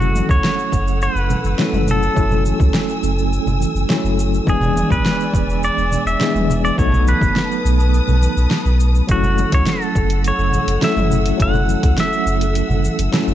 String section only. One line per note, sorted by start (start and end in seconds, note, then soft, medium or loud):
0.00 4.44 A4 medium
0.00 2.15 F#5 medium
0.00 6.74 E6 medium
2.16 4.45 G#5 medium
4.47 6.76 D5 medium
4.47 6.76 G#5 medium
6.78 9.07 B4 medium
6.78 9.07 A5 medium
6.78 9.07 D#6 medium
9.09 13.34 A4 medium
9.09 13.34 F#5 medium
9.09 13.34 E6 medium